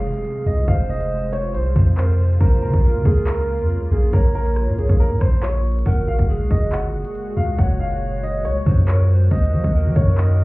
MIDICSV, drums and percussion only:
0, 0, Header, 1, 2, 480
1, 0, Start_track
1, 0, Tempo, 431655
1, 755, Time_signature, 4, 2, 24, 8
1, 11610, End_track
2, 0, Start_track
2, 0, Title_t, "Drums"
2, 156, Note_on_c, 9, 42, 81
2, 267, Note_off_c, 9, 42, 0
2, 273, Note_on_c, 9, 42, 73
2, 384, Note_off_c, 9, 42, 0
2, 520, Note_on_c, 9, 42, 85
2, 631, Note_off_c, 9, 42, 0
2, 754, Note_on_c, 9, 42, 84
2, 755, Note_on_c, 9, 36, 124
2, 865, Note_off_c, 9, 42, 0
2, 866, Note_off_c, 9, 36, 0
2, 1120, Note_on_c, 9, 42, 85
2, 1231, Note_off_c, 9, 42, 0
2, 1482, Note_on_c, 9, 42, 86
2, 1593, Note_off_c, 9, 42, 0
2, 1720, Note_on_c, 9, 42, 72
2, 1831, Note_off_c, 9, 42, 0
2, 1955, Note_on_c, 9, 36, 88
2, 2066, Note_off_c, 9, 36, 0
2, 2076, Note_on_c, 9, 42, 76
2, 2187, Note_off_c, 9, 42, 0
2, 2196, Note_on_c, 9, 39, 106
2, 2307, Note_off_c, 9, 39, 0
2, 2436, Note_on_c, 9, 42, 49
2, 2515, Note_off_c, 9, 42, 0
2, 2515, Note_on_c, 9, 42, 53
2, 2595, Note_off_c, 9, 42, 0
2, 2595, Note_on_c, 9, 42, 61
2, 2674, Note_off_c, 9, 42, 0
2, 2674, Note_on_c, 9, 42, 65
2, 2675, Note_on_c, 9, 36, 126
2, 2755, Note_off_c, 9, 42, 0
2, 2755, Note_on_c, 9, 42, 74
2, 2786, Note_off_c, 9, 36, 0
2, 2834, Note_off_c, 9, 42, 0
2, 2834, Note_on_c, 9, 42, 76
2, 2946, Note_off_c, 9, 42, 0
2, 3040, Note_on_c, 9, 42, 85
2, 3042, Note_on_c, 9, 36, 96
2, 3151, Note_off_c, 9, 42, 0
2, 3153, Note_off_c, 9, 36, 0
2, 3395, Note_on_c, 9, 36, 106
2, 3401, Note_on_c, 9, 42, 86
2, 3506, Note_off_c, 9, 36, 0
2, 3513, Note_off_c, 9, 42, 0
2, 3633, Note_on_c, 9, 39, 118
2, 3637, Note_on_c, 9, 42, 74
2, 3745, Note_off_c, 9, 39, 0
2, 3748, Note_off_c, 9, 42, 0
2, 3995, Note_on_c, 9, 42, 77
2, 4106, Note_off_c, 9, 42, 0
2, 4113, Note_on_c, 9, 42, 71
2, 4224, Note_off_c, 9, 42, 0
2, 4360, Note_on_c, 9, 42, 82
2, 4471, Note_off_c, 9, 42, 0
2, 4594, Note_on_c, 9, 42, 87
2, 4595, Note_on_c, 9, 36, 122
2, 4705, Note_off_c, 9, 42, 0
2, 4706, Note_off_c, 9, 36, 0
2, 4961, Note_on_c, 9, 42, 85
2, 5072, Note_off_c, 9, 42, 0
2, 5074, Note_on_c, 9, 37, 78
2, 5185, Note_off_c, 9, 37, 0
2, 5322, Note_on_c, 9, 42, 89
2, 5433, Note_off_c, 9, 42, 0
2, 5443, Note_on_c, 9, 36, 96
2, 5554, Note_off_c, 9, 36, 0
2, 5559, Note_on_c, 9, 42, 74
2, 5670, Note_off_c, 9, 42, 0
2, 5795, Note_on_c, 9, 36, 90
2, 5795, Note_on_c, 9, 37, 100
2, 5906, Note_off_c, 9, 36, 0
2, 5906, Note_off_c, 9, 37, 0
2, 5917, Note_on_c, 9, 42, 79
2, 6028, Note_off_c, 9, 42, 0
2, 6036, Note_on_c, 9, 39, 107
2, 6147, Note_off_c, 9, 39, 0
2, 6276, Note_on_c, 9, 42, 50
2, 6357, Note_off_c, 9, 42, 0
2, 6357, Note_on_c, 9, 42, 67
2, 6435, Note_off_c, 9, 42, 0
2, 6435, Note_on_c, 9, 42, 81
2, 6514, Note_off_c, 9, 42, 0
2, 6514, Note_on_c, 9, 42, 87
2, 6516, Note_on_c, 9, 36, 123
2, 6625, Note_off_c, 9, 42, 0
2, 6627, Note_off_c, 9, 36, 0
2, 6881, Note_on_c, 9, 42, 88
2, 6883, Note_on_c, 9, 36, 94
2, 6992, Note_off_c, 9, 42, 0
2, 6994, Note_off_c, 9, 36, 0
2, 7235, Note_on_c, 9, 36, 107
2, 7242, Note_on_c, 9, 42, 86
2, 7347, Note_off_c, 9, 36, 0
2, 7354, Note_off_c, 9, 42, 0
2, 7475, Note_on_c, 9, 39, 115
2, 7479, Note_on_c, 9, 42, 73
2, 7586, Note_off_c, 9, 39, 0
2, 7590, Note_off_c, 9, 42, 0
2, 7836, Note_on_c, 9, 42, 79
2, 7948, Note_off_c, 9, 42, 0
2, 7953, Note_on_c, 9, 42, 73
2, 8065, Note_off_c, 9, 42, 0
2, 8199, Note_on_c, 9, 42, 85
2, 8311, Note_off_c, 9, 42, 0
2, 8434, Note_on_c, 9, 42, 86
2, 8435, Note_on_c, 9, 36, 119
2, 8545, Note_off_c, 9, 42, 0
2, 8546, Note_off_c, 9, 36, 0
2, 8801, Note_on_c, 9, 42, 89
2, 8912, Note_off_c, 9, 42, 0
2, 9162, Note_on_c, 9, 42, 90
2, 9273, Note_off_c, 9, 42, 0
2, 9399, Note_on_c, 9, 42, 71
2, 9510, Note_off_c, 9, 42, 0
2, 9635, Note_on_c, 9, 36, 90
2, 9746, Note_off_c, 9, 36, 0
2, 9756, Note_on_c, 9, 42, 77
2, 9868, Note_off_c, 9, 42, 0
2, 9875, Note_on_c, 9, 39, 110
2, 9987, Note_off_c, 9, 39, 0
2, 10115, Note_on_c, 9, 42, 48
2, 10194, Note_off_c, 9, 42, 0
2, 10194, Note_on_c, 9, 42, 54
2, 10275, Note_off_c, 9, 42, 0
2, 10275, Note_on_c, 9, 42, 61
2, 10354, Note_off_c, 9, 42, 0
2, 10354, Note_on_c, 9, 42, 69
2, 10355, Note_on_c, 9, 36, 120
2, 10434, Note_off_c, 9, 42, 0
2, 10434, Note_on_c, 9, 42, 73
2, 10466, Note_off_c, 9, 36, 0
2, 10514, Note_off_c, 9, 42, 0
2, 10514, Note_on_c, 9, 42, 78
2, 10625, Note_off_c, 9, 42, 0
2, 10720, Note_on_c, 9, 42, 85
2, 10722, Note_on_c, 9, 36, 98
2, 10831, Note_off_c, 9, 42, 0
2, 10833, Note_off_c, 9, 36, 0
2, 11075, Note_on_c, 9, 36, 109
2, 11082, Note_on_c, 9, 42, 89
2, 11186, Note_off_c, 9, 36, 0
2, 11193, Note_off_c, 9, 42, 0
2, 11315, Note_on_c, 9, 39, 116
2, 11318, Note_on_c, 9, 42, 71
2, 11426, Note_off_c, 9, 39, 0
2, 11429, Note_off_c, 9, 42, 0
2, 11610, End_track
0, 0, End_of_file